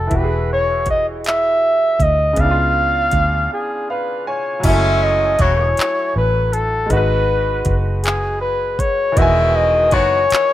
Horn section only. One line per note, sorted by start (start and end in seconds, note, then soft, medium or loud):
4.63 5.35 A2 medium
4.63 5.35 G#3 medium
4.63 5.35 C#4 loud
5.39 5.69 C#3 medium
5.39 5.69 A3 medium
5.39 5.69 F#4 medium
9.16 9.88 B2 medium
9.16 9.88 D#3 loud
9.16 9.88 G#3 medium
9.92 10.22 D#3 medium
9.92 10.22 B3 medium
9.92 10.22 F#4 medium